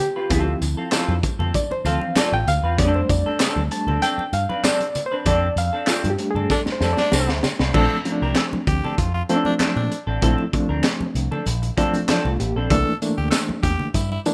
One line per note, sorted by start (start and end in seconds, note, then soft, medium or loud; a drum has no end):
0.00 0.57 G4 medium
0.00 muted clean electric guitar stroke soft
0.00 closed hi-hat medium
0.00 tambourine medium
0.00 low conga medium
0.16 0.29 C4 medium
0.16 0.29 F4 medium
0.16 0.31 B4 medium
0.30 0.53 D2 loud
0.30 1.19 F3 medium
0.30 0.51 C4 medium
0.30 1.19 C4 medium
0.30 1.20 E4 medium
0.30 0.51 F4 medium
0.30 0.52 A4 medium
0.30 kick loud
0.30 closed hi-hat loud
0.30 tambourine soft
0.30 muted conga soft
0.30 low conga medium
0.61 0.73 D2 medium
0.61 muted clean electric guitar stroke soft
0.61 closed hi-hat medium
0.61 tambourine medium
0.77 0.90 C4 medium
0.77 0.90 F4 medium
0.77 0.92 A4 medium
0.91 1.12 C4 medium
0.91 1.13 F4 loud
0.91 1.13 A4 loud
0.91 snare loud
0.91 clap medium
0.91 closed hi-hat medium
0.91 tambourine medium
1.08 1.19 F2 medium
1.08 high conga medium
1.23 muted clean electric guitar stroke soft
1.23 kick loud
1.23 closed hi-hat medium
1.23 tambourine soft
1.39 1.50 F2 medium
1.39 1.53 C4 soft
1.39 1.54 F4 medium
1.39 1.54 A4 medium
1.39 low conga medium
1.54 1.72 D5 medium
1.54 muted clean electric guitar stroke soft
1.54 kick medium
1.54 closed hi-hat medium
1.54 tambourine medium
1.54 muted conga soft
1.54 high conga medium
1.71 1.86 C5 medium
1.71 muted picked electric bass stroke medium
1.71 muted clean electric guitar stroke medium
1.71 muted conga soft
1.85 1.97 D2 medium
1.85 2.14 E3 medium
1.85 2.13 F3 medium
1.85 2.06 C4 medium
1.85 2.14 C4 soft
1.85 2.01 F4 medium
1.85 2.00 A4 medium
1.85 2.15 F5 loud
1.85 closed hi-hat medium
1.85 tambourine medium
2.01 muted clean electric guitar stroke soft
2.01 high conga medium
2.16 2.37 C4 medium
2.16 2.37 F4 loud
2.16 2.37 A4 medium
2.16 2.32 D5 loud
2.16 snare loud
2.16 clap medium
2.16 closed hi-hat loud
2.16 tambourine loud
2.16 high conga medium
2.33 2.43 A1 medium
2.33 2.48 G5 loud
2.33 muted conga soft
2.47 2.59 D2 loud
2.47 2.80 F5 loud
2.47 muted clean electric guitar stroke soft
2.47 closed hi-hat medium
2.47 tambourine medium
2.47 low conga medium
2.63 2.78 E2 medium
2.63 2.77 C4 medium
2.63 2.79 F4 medium
2.63 2.78 B4 medium
2.78 3.01 F2 loud
2.78 3.67 G3 medium
2.78 3.67 A3 medium
2.78 2.99 C4 medium
2.78 2.99 D4 loud
2.78 3.68 D4 medium
2.78 3.00 A4 medium
2.78 2.96 D5 loud
2.78 kick loud
2.78 closed hi-hat medium
2.78 tambourine soft
2.78 low conga medium
2.94 3.10 C5 medium
2.94 muted conga soft
3.09 3.21 F2 loud
3.09 3.38 D5 medium
3.09 muted clean electric guitar stroke soft
3.09 kick loud
3.09 closed hi-hat medium
3.09 tambourine medium
3.26 3.39 C4 medium
3.26 3.40 D4 medium
3.26 3.41 A4 medium
3.40 3.61 C4 medium
3.40 3.61 D4 medium
3.40 3.62 A4 loud
3.40 snare loud
3.40 clap loud
3.40 closed hi-hat loud
3.40 tambourine medium
3.56 3.67 D2 medium
3.56 high conga medium
3.71 3.99 G3 soft
3.71 3.99 A3 soft
3.71 4.00 D4 soft
3.71 4.03 A5 loud
3.71 muted clean electric guitar stroke soft
3.71 closed hi-hat medium
3.71 tambourine soft
3.87 3.98 D2 medium
3.87 4.01 C4 medium
3.87 4.01 D4 medium
3.87 4.02 A4 medium
3.87 low conga medium
4.02 4.23 C4 medium
4.02 4.23 D4 medium
4.02 4.23 A4 medium
4.02 4.34 G5 loud
4.02 closed hi-hat medium
4.02 tambourine medium
4.02 muted conga soft
4.02 high conga medium
4.18 muted picked electric bass stroke soft
4.18 muted conga soft
4.33 4.45 G2 medium
4.33 4.62 F5 loud
4.33 muted clean electric guitar stroke soft
4.33 closed hi-hat medium
4.33 tambourine soft
4.49 4.63 C4 soft
4.49 4.64 D4 medium
4.49 4.64 B4 medium
4.49 high conga medium
4.64 4.85 C4 medium
4.64 4.85 D4 medium
4.64 4.86 A4 medium
4.64 5.03 D5 loud
4.64 snare loud
4.64 clap loud
4.64 closed hi-hat medium
4.64 tambourine loud
4.64 muted conga soft
4.64 high conga medium
4.80 closed hi-hat medium
4.80 muted conga soft
4.95 muted clean electric guitar stroke soft
4.95 closed hi-hat medium
4.95 tambourine medium
4.95 low conga medium
5.06 5.15 C5 loud
5.12 5.25 C4 medium
5.12 5.26 D4 medium
5.12 5.26 B4 medium
5.26 5.48 F2 loud
5.26 5.47 C4 medium
5.26 5.47 D4 loud
5.26 5.47 A4 loud
5.26 5.55 D5 loud
5.26 kick loud
5.26 closed hi-hat loud
5.26 muted conga soft
5.26 low conga medium
5.56 5.69 F2 loud
5.56 5.87 F5 loud
5.56 muted clean electric guitar stroke medium
5.56 closed hi-hat medium
5.56 tambourine medium
5.73 5.86 C4 medium
5.73 5.87 D4 medium
5.73 5.88 A4 medium
5.87 6.08 C4 loud
5.87 6.09 D4 medium
5.87 6.10 F4 medium
5.87 6.09 A4 medium
5.87 snare loud
5.87 clap medium
5.87 closed hi-hat medium
5.87 tambourine loud
5.87 muted conga soft
6.04 6.15 G2 medium
6.04 closed hi-hat medium
6.04 muted conga soft
6.04 high conga medium
6.10 6.29 G4 medium
6.18 7.70 G3 medium
6.18 7.70 A3 soft
6.18 7.71 D4 medium
6.18 muted clean electric guitar stroke soft
6.18 closed hi-hat medium
6.31 6.51 G#4 medium
6.35 6.46 G2 medium
6.35 6.51 C4 soft
6.35 6.50 D4 medium
6.35 6.50 A4 medium
6.35 low conga medium
6.50 6.61 D4 loud
6.50 6.60 A4 medium
6.50 kick loud
6.50 snare medium
6.50 tambourine medium
6.50 muted conga soft
6.50 high conga medium
6.66 muted picked electric bass stroke medium
6.66 muted clean electric guitar stroke soft
6.66 snare medium
6.66 muted conga soft
6.72 6.93 C5 medium
6.81 6.93 F2 loud
6.81 7.02 C4 medium
6.81 6.98 D4 loud
6.81 6.97 A4 loud
6.81 snare medium
6.81 tambourine medium
6.93 7.13 D5 loud
6.97 7.41 D4 loud
6.97 muted clean electric guitar stroke soft
6.97 snare medium
6.97 high conga medium
7.12 7.29 C2 loud
7.12 7.33 C4 medium
7.12 7.33 D4 medium
7.12 7.34 A4 medium
7.12 7.42 C5 medium
7.12 snare medium
7.12 tambourine loud
7.12 high conga medium
7.29 7.39 D2 loud
7.29 snare medium
7.29 muted conga soft
7.43 muted clean electric guitar stroke soft
7.43 snare loud
7.43 tambourine medium
7.43 low conga medium
7.59 7.70 C2 loud
7.59 7.74 C4 medium
7.59 7.75 D4 medium
7.59 7.75 B4 medium
7.59 snare medium
7.74 7.86 A#1 loud
7.74 7.96 F3 medium
7.74 7.96 A3 medium
7.74 7.96 C4 medium
7.74 7.95 C4 medium
7.74 7.96 D4 medium
7.74 7.99 A4 loud
7.74 7.96 A4 loud
7.74 kick loud
7.74 crash loud
7.74 muted conga soft
7.74 low conga medium
7.90 muted conga soft
8.05 8.92 F3 medium
8.05 8.92 A3 medium
8.05 8.92 C4 medium
8.05 8.12 C#4 medium
8.05 muted clean electric guitar stroke soft
8.05 closed hi-hat medium
8.12 8.95 D4 medium
8.22 8.32 C2 medium
8.22 8.36 C4 medium
8.22 8.37 D4 medium
8.22 8.33 G4 medium
8.22 8.37 A#4 medium
8.35 8.47 A4 medium
8.35 muted clean electric guitar stroke soft
8.35 snare loud
8.35 clap medium
8.35 closed hi-hat medium
8.53 muted picked electric bass stroke soft
8.53 muted clean electric guitar stroke medium
8.53 muted conga soft
8.53 high conga medium
8.67 8.79 D2 medium
8.67 8.92 G4 loud
8.67 kick loud
8.67 closed hi-hat medium
8.84 8.97 C4 medium
8.84 8.98 D4 medium
8.84 8.98 A4 medium
8.84 low conga medium
8.97 9.21 F2 medium
8.97 9.11 F4 medium
8.97 muted clean electric guitar stroke soft
8.97 kick medium
8.97 closed hi-hat medium
8.97 muted conga soft
8.97 high conga medium
9.14 9.23 F4 loud
9.14 muted clean electric guitar stroke soft
9.29 9.94 F3 loud
9.29 9.94 A3 medium
9.29 9.50 C4 medium
9.29 9.94 C4 medium
9.29 9.36 C#4 medium
9.29 9.45 D4 medium
9.29 9.44 A4 medium
9.29 closed hi-hat medium
9.36 9.98 D4 loud
9.45 9.54 D4 loud
9.45 muted clean electric guitar stroke soft
9.45 high conga medium
9.59 9.80 C4 medium
9.59 9.81 D4 medium
9.59 9.81 A4 medium
9.59 snare loud
9.59 clap medium
9.59 closed hi-hat medium
9.59 muted conga soft
9.59 high conga medium
9.76 9.87 A#2 medium
9.76 10.01 D4 loud
9.76 muted conga soft
9.90 muted clean electric guitar stroke soft
9.90 closed hi-hat medium
10.07 10.18 A1 medium
10.07 10.20 C4 medium
10.07 10.21 D4 medium
10.07 10.22 A4 medium
10.21 10.34 A#1 loud
10.21 10.45 F3 medium
10.21 10.45 A3 medium
10.21 10.42 C4 medium
10.21 10.45 C4 medium
10.21 10.43 D4 medium
10.21 10.45 E4 medium
10.21 10.43 A4 loud
10.21 kick loud
10.21 closed hi-hat medium
10.21 low conga medium
10.38 muted conga soft
10.53 11.40 F3 medium
10.53 11.40 A3 medium
10.53 11.40 C4 medium
10.53 11.40 D4 medium
10.53 muted clean electric guitar stroke soft
10.53 kick loud
10.53 closed hi-hat medium
10.69 10.80 D2 medium
10.69 10.83 C4 soft
10.69 10.83 D4 medium
10.69 10.84 A#4 medium
10.84 muted clean electric guitar stroke soft
10.84 snare loud
10.84 clap medium
10.84 closed hi-hat medium
11.00 muted clean electric guitar stroke soft
11.00 muted picked electric bass stroke soft
11.00 muted conga soft
11.00 high conga medium
11.15 11.27 C2 medium
11.15 closed hi-hat medium
11.31 11.45 C4 medium
11.31 11.46 D4 medium
11.31 11.46 A4 medium
11.31 low conga medium
11.46 11.69 A#1 loud
11.46 muted clean electric guitar stroke soft
11.46 closed hi-hat medium
11.46 high conga medium
11.62 muted clean electric guitar stroke soft
11.62 closed hi-hat medium
11.62 muted conga soft
11.77 12.09 F3 loud
11.77 12.09 A3 medium
11.77 11.98 C4 medium
11.77 12.09 C4 medium
11.77 11.94 D4 medium
11.77 12.08 D4 loud
11.77 11.93 A4 loud
11.77 kick loud
11.77 closed hi-hat medium
11.94 muted clean electric guitar stroke soft
11.94 closed hi-hat soft
11.94 high conga medium
12.09 12.25 F3 medium
12.09 12.29 C4 medium
12.09 12.30 D4 medium
12.09 12.25 D4 medium
12.09 12.30 A4 loud
12.09 snare loud
12.09 clap medium
12.09 closed hi-hat medium
12.09 muted conga soft
12.09 high conga medium
12.25 12.36 C2 medium
12.25 12.39 A3 medium
12.25 12.39 F4 medium
12.25 muted conga soft
12.40 12.52 A1 medium
12.40 12.56 A#3 medium
12.40 12.55 G4 medium
12.40 muted clean electric guitar stroke soft
12.40 closed hi-hat medium
12.56 12.67 A#1 medium
12.56 12.86 C4 medium
12.56 12.71 C4 medium
12.56 12.71 D4 medium
12.56 12.86 A4 medium
12.56 12.71 A4 medium
12.70 12.82 C2 loud
12.70 12.93 E3 loud
12.70 12.93 A3 medium
12.70 12.93 A#3 medium
12.70 12.93 D4 loud
12.70 12.95 A4 loud
12.70 kick loud
12.70 closed hi-hat medium
12.70 tambourine soft
12.70 muted conga soft
12.70 low conga medium
13.02 13.89 E3 medium
13.02 13.89 A3 medium
13.02 13.89 A#3 medium
13.02 13.89 D4 medium
13.02 closed hi-hat medium
13.02 tambourine medium
13.17 13.29 D2 medium
13.17 13.29 G4 loud
13.30 13.41 A4 medium
13.30 snare loud
13.30 clap loud
13.30 closed hi-hat medium
13.30 tambourine medium
13.30 muted conga soft
13.49 muted picked electric bass stroke soft
13.49 high conga medium
13.63 13.75 E2 medium
13.63 13.88 G4 loud
13.63 kick medium
13.63 closed hi-hat medium
13.63 tambourine soft
13.80 low conga medium
13.94 14.17 G2 medium
13.94 14.08 E4 loud
13.94 kick medium
13.94 closed hi-hat medium
13.94 tambourine medium
13.94 muted conga soft
13.94 high conga medium
14.12 14.20 E4 medium
14.12 muted conga soft
14.25 14.34 E3 loud
14.25 14.34 A3 medium
14.25 14.34 A#3 medium
14.25 14.34 D4 loud
14.25 closed hi-hat medium
14.25 tambourine medium